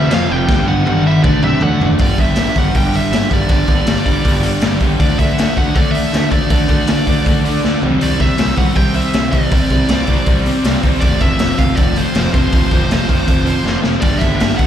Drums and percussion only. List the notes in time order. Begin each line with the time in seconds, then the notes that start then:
0.11 snare, crash
0.49 kick, snare
0.87 high tom
1.24 kick, mid tom
1.43 mid tom
1.61 floor tom
1.81 floor tom
1.99 kick, open hi-hat
2.18 kick, open hi-hat
2.36 snare, open hi-hat
2.56 kick, open hi-hat
2.75 kick, open hi-hat
2.94 open hi-hat
3.13 snare, open hi-hat
3.31 kick, open hi-hat
3.49 kick, open hi-hat
3.67 kick, open hi-hat
3.87 snare, open hi-hat
4.06 kick, open hi-hat
4.25 kick, open hi-hat
4.43 open hi-hat
4.61 snare, open hi-hat
4.80 kick, open hi-hat
5.00 kick, open hi-hat
5.19 kick, open hi-hat
5.38 snare, open hi-hat
5.57 kick, open hi-hat
5.76 kick, open hi-hat
5.95 open hi-hat
6.14 snare, open hi-hat
6.31 kick, open hi-hat
6.50 kick, open hi-hat
6.68 kick, open hi-hat
6.87 snare, open hi-hat
7.07 kick, open hi-hat
7.26 kick, open hi-hat
7.45 open hi-hat
7.64 snare
7.82 floor tom
8.01 open hi-hat
8.20 kick, open hi-hat
8.38 snare, open hi-hat
8.57 kick, open hi-hat
8.75 kick, open hi-hat
8.94 open hi-hat
9.13 snare, open hi-hat
9.32 kick, open hi-hat
9.51 kick, open hi-hat
9.70 kick, open hi-hat
9.89 snare, open hi-hat
10.07 kick, open hi-hat
10.26 kick, open hi-hat
10.46 open hi-hat
10.64 snare, open hi-hat
10.83 kick, open hi-hat
11.01 kick, open hi-hat
11.21 kick, open hi-hat
11.39 snare, open hi-hat
11.59 kick, open hi-hat
11.77 kick, open hi-hat
11.96 open hi-hat
12.15 snare, open hi-hat
12.34 kick, open hi-hat
12.52 kick, open hi-hat
12.71 kick, open hi-hat
12.91 snare, open hi-hat
13.09 kick, open hi-hat
13.28 kick, open hi-hat
13.46 open hi-hat
13.66 snare
13.84 snare
14.02 kick, open hi-hat, crash
14.21 kick, open hi-hat
14.40 snare, open hi-hat
14.59 kick, open hi-hat